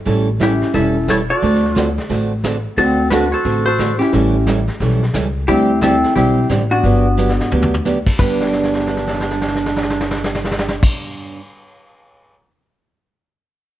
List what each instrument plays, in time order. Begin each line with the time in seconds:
0.05 upright bass A1, steel-string acoustic guitar E3 G3 C#4 E4 A4, brush sweep, kick, snare
0.40 steel-string acoustic guitar E3 G3 C#4 E4 A4, clarinet C#4, hollow-body jazz guitar E4 G4, kick, snare, hi-hat pedal
0.61 snare
0.73 upright bass E1, steel-string acoustic guitar E3 G3 C#4 E4 A4, clarinet C#4, hollow-body jazz guitar E4 A4, brush sweep, kick, snare
1.08 steel-string acoustic guitar E3 G3 C#4 E4 A4, clarinet E4, hollow-body jazz guitar A4 C#5, kick, snare, hi-hat pedal
1.30 clarinet F#4, hollow-body jazz guitar A4 D5
1.42 upright bass D2, steel-string acoustic guitar D3 A3 C4 F#4 A4, brush sweep, kick, snare
1.54 snare
1.65 snare
1.75 steel-string acoustic guitar D3 A3 C4 F#4 A4, clarinet F4, hollow-body jazz guitar C#5, kick, snare, hi-hat pedal
1.98 snare
2.09 upright bass A1, steel-string acoustic guitar D3 A3 C4 F#4 A4, brush sweep, kick, snare
2.43 steel-string acoustic guitar D3 A3 C4 F#4 A4, kick, snare, hi-hat pedal
2.77 upright bass D2, steel-string acoustic guitar D3 A3 C4 F#4 A4, clarinet C4, hollow-body jazz guitar F#4 A4, brush sweep, kick, snare
3.10 steel-string acoustic guitar D3 A3 C4 F#4 A4, clarinet D4, hollow-body jazz guitar F#4 B4, kick, snare, hi-hat pedal
3.31 clarinet F#4, hollow-body jazz guitar A4 C5
3.45 upright bass A1, steel-string acoustic guitar D3 A3 C4 F#4 A4, brush sweep, kick, snare
3.66 clarinet F#4, hollow-body jazz guitar A4 C5
3.78 steel-string acoustic guitar D3 A3 C4 F#4 A4, kick, snare, hi-hat pedal
3.98 clarinet C#4, hollow-body jazz guitar E4 G4, snare
4.12 upright bass A1, steel-string acoustic guitar E3 G3 C#4 E4 A4, brush sweep, kick, snare
4.47 steel-string acoustic guitar E3 G3 C#4 E4 A4, kick, snare, hi-hat pedal
4.68 snare
4.80 upright bass B1, steel-string acoustic guitar E3 G3 C#4 E4 A4, brush sweep, kick, snare
4.91 snare
5.03 snare
5.14 upright bass C#2, steel-string acoustic guitar E3 G3 C#4 E4 A4, kick, snare, hi-hat pedal
5.48 upright bass D2, steel-string acoustic guitar D3 G3 C4 D4 G4, clarinet C4, hollow-body jazz guitar E4 G4, brush sweep, kick, snare
5.81 steel-string acoustic guitar D3 G3 C4 D4 G4, clarinet C4, hollow-body jazz guitar E4 A4, kick, snare, hi-hat pedal
6.03 snare
6.16 upright bass B1, steel-string acoustic guitar D3 G3 C4 D4 G4, clarinet C4, hollow-body jazz guitar E4 G4, brush sweep, kick, snare
6.49 upright bass A1, steel-string acoustic guitar D3 G3 C4 D4 G4, kick, snare, hi-hat pedal
6.71 clarinet B3, hollow-body jazz guitar D4 F#4
6.83 upright bass G1, steel-string acoustic guitar D3 F#3 B3 D4 G4, brush sweep, kick, snare
7.17 steel-string acoustic guitar D3 F#3 B3 D4 G4, hi-hat pedal
7.29 snare
7.41 snare
7.51 upright bass D2, steel-string acoustic guitar D3 F#3 B3 D4 G4, floor tom
7.62 floor tom
7.74 floor tom
7.85 steel-string acoustic guitar D3 F#3 B3 D4 G4, snare, hi-hat pedal
8.06 kick, crash
8.19 upright bass G1, steel-string acoustic guitar G2 D3 B3 D4 G4, clarinet D4, hollow-body jazz guitar B4, kick, crash
8.40 snare
8.46 snare
8.53 snare
8.63 snare
8.74 snare
8.80 snare
8.87 snare
8.97 snare
9.07 snare
9.14 snare
9.20 snare
9.31 snare
9.41 snare
9.48 snare
9.55 snare
9.66 snare
9.76 snare
9.83 snare
9.90 snare
10.00 snare
10.11 snare
10.16 snare
10.24 snare
10.35 snare
10.44 snare
10.51 snare
10.59 snare
10.69 snare
10.83 kick, crash